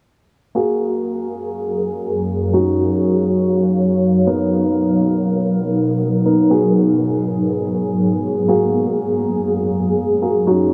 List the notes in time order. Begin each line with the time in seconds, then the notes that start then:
0.55 F#2 F#3 A#3 F#4 G#4 A#4
2.53 F#3 C#4 D#4 F#4 C#5 F5
4.27 B2 B3 D#4 A#4
6.25 B3 D#4 A#4
6.50 G#2 B3 F#4 G#4
8.48 F#2 A#3 F#4 G#4
10.22 A#3 F#4 G#4
10.47 F#3 C#4 D#4 F#4